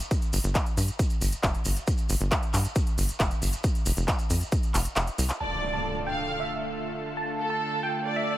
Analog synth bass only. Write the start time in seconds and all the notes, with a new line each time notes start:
0.33 G1
0.44 G1
0.77 G2
1.21 G1
1.43 F1
1.65 G1
2.10 G1
2.21 G1
2.54 G2
2.98 G1
3.20 F1
3.42 G1
3.86 F1
3.97 F1
4.30 F2
4.74 F1
4.96 F1
5.18 C2